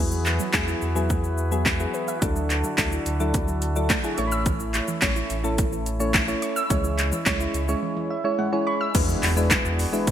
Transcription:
Already playing: E2 E3 F#3 B3 E4 F#4 G#4 B4
0.11 F#3, shaker
0.26 clap, shaker
0.40 F#3, shaker
0.53 E2 F#3 G#3 B3 E4 G#4, kick, snare, clap, shaker
0.68 E4, shaker
0.82 E2, shaker
0.95 F#3 B3 E4 G#4, shaker
1.10 F#3, kick, shaker
1.24 F#3, shaker
1.38 shaker
1.51 F#3 B3 E4 G#4, shaker
1.66 G#3, kick, snare, clap, shaker
1.80 F#3 B3 E4 G#4, shaker
1.94 B4, shaker
2.08 E5, shaker
2.22 D2 D3 F#3 D4 E4 A4, kick, closed hi-hat, shaker
2.36 F#3, shaker
2.50 clap, closed hi-hat, shaker
2.64 F#3, shaker
2.78 D2 F#3 A3 D4 E4 A4, kick, snare, clap, closed hi-hat, shaker
2.92 E4, shaker
3.06 D2, closed hi-hat, shaker
3.20 F#3 D4 E4 A4, shaker
3.34 F#3, kick, closed hi-hat, shaker
3.48 F#3, shaker
3.62 closed hi-hat, shaker
3.76 F#3 D4 E4 A4, shaker
3.90 A3 A5, kick, snare, clap, closed hi-hat, shaker
4.04 F#3 D4 E4 G#4, shaker
4.18 A1 A3 C#4 E4 C#5 C#6, closed hi-hat, shaker
4.27 B5
4.32 E6, shaker
4.46 E3, kick, closed hi-hat, shaker
4.60 E3, shaker
4.74 clap, closed hi-hat, shaker
4.88 E3, shaker
5.02 A1 A3 C#4 E4 C#5, kick, snare, clap, closed hi-hat, shaker
5.16 E4, shaker
5.30 A1, closed hi-hat, shaker
5.44 A3 C#4 E4 A4, shaker
5.58 E3, kick, closed hi-hat, shaker
5.72 E3, shaker
5.86 closed hi-hat, shaker
6.00 A3 C#4 E4 C#5, shaker
6.14 A3, kick, snare, clap, closed hi-hat, shaker
6.28 A3 C#4 E4 C#5, shaker
6.42 C#6, closed hi-hat, shaker
6.56 E6, shaker
6.70 C#2 E3 G#3 C#4 E4 C#5, kick, closed hi-hat, shaker
6.84 E3, shaker
6.99 clap, closed hi-hat, shaker
7.12 E3, shaker
7.26 C#2 G#3 C#4 E4 C#5, kick, snare, clap, closed hi-hat, shaker
7.40 E4, shaker
7.54 C#2, closed hi-hat, shaker
7.68 G#3 C#4 E4 C#5, shaker
7.82 E3
7.97 E3
8.10 E5
8.24 G#3 C#4 E4 C#5
8.39 G#3 F#5
8.52 G#3 C#4 E4 C#5 G#5
8.67 B5 C#6
8.81 E6
8.95 E2 E3 G#3 B3 D4 E4 F#4 G#4 B4, kick, closed hi-hat, crash, impact, shaker
9.09 shaker
9.23 E2, clap, open hi-hat, shaker
9.37 G#3 D4 E4 B4, shaker
9.51 kick, snare, clap, closed hi-hat, shaker
9.65 E2, shaker
9.79 open hi-hat, shaker
9.93 G#3 D4 E4 B4, shaker
10.07 B1, kick, closed hi-hat, shaker

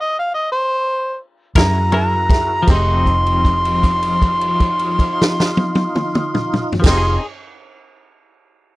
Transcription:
0.01 D#5
0.19 F5
0.35 D#5
0.52 C5
1.55 F#2 C#4 E4 F#4 G#4 A#4 E5 A#5, kick, snare, ride
1.92 F#3 C#4 E4 G#4 A#4 E5, ride
1.97 A#5
2.30 G#4 A#4 E5, kick, snare, ride
2.63 F3
2.67 F1 A3 C4 D#4 G4 G#4 D#5 F#5, kick, crash
2.71 D#4 C6
3.06 D#4 F4, kick, crash
3.26 crash
3.45 kick, crash
3.65 crash
3.83 kick, crash
4.03 crash
4.22 kick, crash
4.41 crash
4.60 kick, crash
4.79 crash
4.99 kick, crash
5.21 snare
5.40 snare
5.57 high tom
5.75 high tom
5.95 mid tom
6.15 mid tom
6.35 mid tom
6.53 mid tom
6.72 floor tom
6.80 F3 G4, crash
6.84 F1 C4 D#4 F4 G#4 D#5 C6, kick, snare
6.91 D#4
6.98 G#4

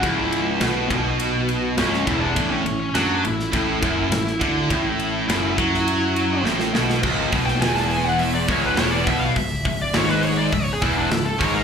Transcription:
0.02 C#1 C#2 E4, kick, ride
0.18 E4
0.33 ride
0.61 B1 B2, snare, ride
0.88 B1 B2, kick, ride
1.20 ride
1.49 ride
1.77 C#1 C#2 C#4, snare, ride
1.93 snare
2.07 E1 E2 E4, kick, ride
2.21 D4
2.36 A1 A2, kick, ride
2.51 C#4
2.66 A1 A2, ride
2.80 C#4
2.94 F#2 F#3 D4, snare, ride
3.25 A1 A2 E4, ride
3.40 snare
3.53 A1 A2, kick, ride
3.83 F#1 F#2, kick, ride
4.12 A1 A2, snare, ride
4.27 snare
4.41 D2 D3, kick, ride
4.70 A1 A2, kick, ride
5.00 ride
5.29 F#1 F#2, snare, ride
5.58 F#2 F#3, kick, ride
5.74 snare
5.88 ride
6.16 ride
6.44 A1 A2, snare
6.60 snare
6.73 B1 B2, snare
6.90 snare
7.03 C#1 C#2, kick, crash
7.32 B1 B2, kick, open hi-hat
7.46 G5, snare
7.61 E1 E2 G#5, snare, open hi-hat
7.76 A5, snare
7.89 G#5, open hi-hat
8.07 F#5
8.19 E5, open hi-hat
8.35 D5
8.48 C#1 C#2 C#5, kick, open hi-hat
8.66 B4
8.76 E1 E2, snare, open hi-hat
8.80 C#5
8.92 D5
9.06 B1 B2 E5, kick, open hi-hat
9.21 F5
9.36 C#1 C#2 E5, kick, open hi-hat
9.65 C#1 C#2, kick, open hi-hat
9.81 D5
9.94 G#1 G#2 C#5, snare, open hi-hat
10.09 B4, snare
10.23 C#5, open hi-hat
10.38 D5
10.52 C#1 C#2 E5, kick, open hi-hat
10.63 C#5
10.73 G#4
10.82 E1 E2 E4, kick, open hi-hat
10.97 D4
11.10 C#1 C#2 E4, snare, open hi-hat
11.25 A4
11.39 G#1 G#2 C#5, kick, open hi-hat
11.54 A#4

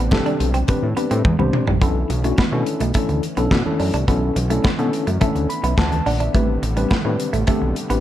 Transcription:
Already playing: A1 C3 G3 A3 C4 D4
0.11 C4 D4 G4 A4, kick, snare, clap, high conga
0.26 D4, closed hi-hat
0.40 B1, muted clean electric guitar stroke, closed hi-hat
0.54 C4, closed hi-hat
0.68 C4 D4 G4 B4, muted clean electric guitar stroke, kick, closed hi-hat, muted conga, low conga
0.83 A2
0.96 B3 C4 D4 G4 B4, closed hi-hat, muted conga
1.11 A2 C4, closed hi-hat
1.25 E2, kick, high tom, high conga
1.39 C2 B3 C4 D4 G4 C5, high conga
1.53 muted clean electric guitar stroke, mid tom
1.67 A1 G3, floor tom
1.81 B1 D3 E3 A3 B3 C#4 D4 E4 A4, kick, closed hi-hat, muted conga
2.10 B1, muted clean electric guitar stroke, closed hi-hat, muted conga
2.24 A3 C#4 D4 E4 F#4, closed hi-hat
2.38 B2 B3, kick, snare, clap, high conga
2.52 B2 C#4 D4 E4 A4, muted clean electric guitar stroke
2.66 closed hi-hat
2.80 B1 A3, closed hi-hat
2.94 A3 C#4 D4 E4 A4, kick, closed hi-hat, muted conga
3.09 D2, muted clean electric guitar stroke, closed hi-hat
3.23 closed hi-hat, muted conga
3.37 B1 B3 C#4 D4 E4 A4, closed hi-hat
3.51 B2, muted clean electric guitar stroke, kick, snare, clap, high conga
3.65 C#4 D4 E4 A4, high conga
3.80 F#2 D4, open hi-hat
3.94 C2 D4, closed hi-hat
4.08 B1 B3 C#4 D4 E4 A4, kick, closed hi-hat, muted conga
4.36 B1, muted clean electric guitar stroke, closed hi-hat, muted conga
4.50 A3 C#4 D4 E4 A4, closed hi-hat
4.64 B2 B3, kick, snare, clap, high conga
4.78 B2 C#4 D4 E4 A4, muted clean electric guitar stroke, closed hi-hat
4.93 closed hi-hat
5.07 F#2 A3, closed hi-hat
5.21 A3 C#4 D4 E4 A4, kick, closed hi-hat, muted conga, low conga
5.35 D2, muted clean electric guitar stroke, closed hi-hat
5.49 B5, closed hi-hat
5.63 B1 B3 E5, closed hi-hat
5.78 D2 F#5 A5, muted clean electric guitar stroke, kick, snare, clap, high conga
5.92 A5, closed hi-hat, high conga
6.06 A#1 D4 D5 F#5, open hi-hat
6.20 D4 E5, closed hi-hat
6.34 A1 C3 G3 A3 C4 D4 G4 B4, kick, closed hi-hat, muted conga
6.63 A1, muted clean electric guitar stroke, closed hi-hat, muted conga
6.77 G3 C4 D4 G4 B4, closed hi-hat
6.91 A2 B3, kick, snare, clap, high conga
7.05 A2 C4 D4 G4 B4, muted clean electric guitar stroke
7.20 closed hi-hat
7.33 A1 A3, closed hi-hat
7.47 A3 C4 D4 G4 A4, kick, closed hi-hat, muted conga
7.62 B1, muted clean electric guitar stroke
7.76 closed hi-hat
7.90 A1 B3 C4 D4 G4 B4, closed hi-hat

